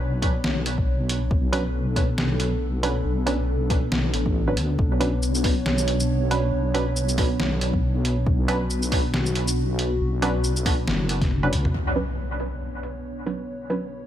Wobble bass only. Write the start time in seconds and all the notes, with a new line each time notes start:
Already playing: B1
1.31 B1
3.05 B1
4.13 A1
4.57 D2
4.79 B1
6.53 B1
8.26 B1
10.01 B1
10.87 F#1
11.53 C#2